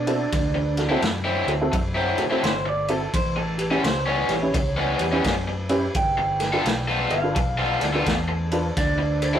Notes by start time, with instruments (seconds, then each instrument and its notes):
Already playing: fingered electric bass B2, clean electric guitar D4
0.07 honky-tonk piano C4 E4 F#4 A4, ride
0.32 fingered electric bass D2, kick, snare, ride
0.55 muted overdriven electric guitar stroke
0.77 honky-tonk piano F#4 A4, snare, ride
0.89 overdriven electric guitar D3 F#3 C4 E4, honky-tonk piano C4 E4 F#4 A4
1.02 fingered electric bass F#2, muted overdriven electric guitar stroke, snare, ride
1.24 overdriven electric guitar D3 F#3 C4 E4
1.47 fingered electric bass D2, honky-tonk piano F#4 A4, ride
1.61 honky-tonk piano C4 E4 F#4 A4
1.72 fingered electric bass F#2, muted overdriven electric guitar stroke, kick, ride
1.95 overdriven electric guitar D3 F#3 C4 E4
2.18 fingered electric bass A2, honky-tonk piano F#4 A4, ride
2.30 overdriven electric guitar D3 F#3 C4 E4, honky-tonk piano C4 E4 F#4 A4
2.43 fingered electric bass G1, clean electric guitar C5, snare, ride
2.66 clean electric guitar D5, muted overdriven electric guitar stroke
2.88 honky-tonk piano C4 E4 F#4 A4, clean electric guitar A4, ride
3.14 fingered electric bass A1, clean electric guitar C5, kick, ride
3.36 clean electric guitar A4, muted overdriven electric guitar stroke
3.58 honky-tonk piano G4 B4, ride
3.71 overdriven electric guitar A2 G3 B3 C#4, honky-tonk piano C#4 E4 G4 B4
3.83 fingered electric bass C#2, clean electric guitar C5, muted overdriven electric guitar stroke, snare, ride
4.06 overdriven electric guitar A2 G3 B3 C#4, clean electric guitar C#5
4.29 fingered electric bass A1, honky-tonk piano G4 B4, snare, ride
4.42 honky-tonk piano C#4 E4 G4 B4
4.54 fingered electric bass C#2, muted overdriven electric guitar stroke, kick, ride
4.77 overdriven electric guitar A2 G3 B3 C#4
4.99 fingered electric bass E2, honky-tonk piano G4 B4, ride
5.12 overdriven electric guitar A2 G3 B3 C#4, honky-tonk piano C#4 E4 G4 B4
5.24 fingered electric bass F#2, kick, snare, ride
5.48 muted overdriven electric guitar stroke
5.69 honky-tonk piano C#4 E4 G4 B4, ride
5.95 fingered electric bass G1, clean electric guitar G5, kick, ride
6.18 muted overdriven electric guitar stroke
6.40 honky-tonk piano A4 B4, snare, ride
6.52 overdriven electric guitar G3 B3 F4 A4, honky-tonk piano D4 F4 A4 B4
6.65 fingered electric bass B1, muted overdriven electric guitar stroke, snare, ride
6.88 overdriven electric guitar G3 B3 F4 A4
7.10 fingered electric bass G1, honky-tonk piano A4 B4, clean electric guitar F5, ride
7.23 honky-tonk piano D4 F4 A4 B4
7.35 fingered electric bass B1, muted overdriven electric guitar stroke, kick, ride
7.58 overdriven electric guitar G3 B3 F4 A4
7.81 fingered electric bass D2, honky-tonk piano A4 D5, clean electric guitar A4, snare, ride
7.93 overdriven electric guitar G3 B3 F4 A4, honky-tonk piano D4 F4 A4 B4
8.06 fingered electric bass E2, kick, snare, ride
8.28 muted overdriven electric guitar stroke
8.52 honky-tonk piano D4 F4 A4 B4, ride
8.77 fingered electric bass D2, clean electric guitar D4, kick, snare, ride
8.98 muted overdriven electric guitar stroke
9.22 honky-tonk piano A4 C5, ride
9.33 overdriven electric guitar D3 F#3 C4 E4, honky-tonk piano E4 F#4 A4 C5